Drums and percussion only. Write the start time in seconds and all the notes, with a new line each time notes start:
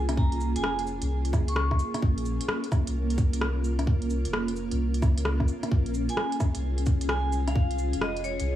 0.09 cross-stick, closed hi-hat
0.17 kick
0.32 closed hi-hat
0.41 cabasa
0.56 closed hi-hat
0.64 cross-stick
0.79 closed hi-hat
0.87 cabasa
1.02 closed hi-hat
1.25 closed hi-hat
1.33 kick, cross-stick, cabasa
1.48 closed hi-hat
1.56 cross-stick
1.71 kick, cross-stick
1.79 cabasa
1.94 cross-stick, closed hi-hat
2.02 kick
2.18 closed hi-hat
2.25 cabasa
2.41 closed hi-hat
2.48 cross-stick
2.64 closed hi-hat
2.72 kick, cross-stick, cabasa
2.87 closed hi-hat
3.10 closed hi-hat
3.18 kick, cabasa
3.33 closed hi-hat
3.41 cross-stick
3.64 cabasa
3.79 cross-stick, closed hi-hat
3.87 kick
4.02 closed hi-hat
4.10 cabasa
4.25 closed hi-hat
4.33 cross-stick
4.48 closed hi-hat
4.56 cabasa
4.71 closed hi-hat
4.94 closed hi-hat
5.02 kick, cross-stick, cabasa
5.18 closed hi-hat
5.25 cross-stick
5.40 kick, cross-stick
5.48 cabasa
5.63 cross-stick, closed hi-hat
5.71 kick
5.86 closed hi-hat
5.94 cabasa
6.09 closed hi-hat
6.17 cross-stick
6.32 closed hi-hat
6.40 kick, cross-stick, cabasa
6.55 closed hi-hat
6.78 closed hi-hat
6.86 kick, cabasa
7.01 closed hi-hat
7.09 cross-stick
7.33 cabasa
7.48 cross-stick, closed hi-hat
7.56 kick
7.71 closed hi-hat
7.79 cabasa
7.93 closed hi-hat
8.01 cross-stick
8.17 closed hi-hat
8.24 cabasa
8.40 closed hi-hat